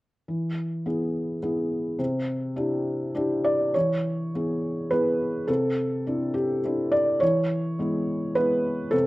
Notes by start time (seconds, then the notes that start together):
0.28 E3
0.86 B3 E4 G#4
1.43 B3 E4 G#4
1.99 C3
2.56 D4 E4 G4
3.15 D4 E4 G4
3.44 D5
3.74 E3 C#5
4.35 B3 E4 G#4
4.91 B3 E4 G#4 B4
5.48 C3 A4
6.07 C4 D4 E4
6.34 G4
6.65 C4 D4 E4
6.92 D5
7.20 E3 C#5
7.79 G#3 B3 E4
8.35 G#3 B3 E4 B4
8.91 C3 A4